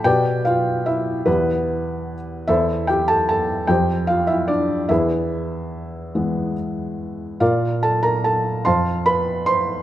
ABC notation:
X:1
M:6/8
L:1/16
Q:3/8=49
K:Ephr
V:1 name="Felt piano"
[GBdg]2 [Ff]2 [Ee]2 [B,EGB]4 z2 | [EAce]2 [Gg] [Aa] [Aa]2 [Gcg]2 [Ff] [Ee] [Dd]2 | [E^GBe]8 z4 | [F_Bdf]2 [Aa] [B_b] [Aa]2 [cfac']2 [=B=b]2 [cc']2 |]
V:2 name="Felt piano" clef=bass
B,,6 E,,6 | E,,6 F,,6 | E,,6 [E,^G,B,]6 | _B,,6 F,,6 |]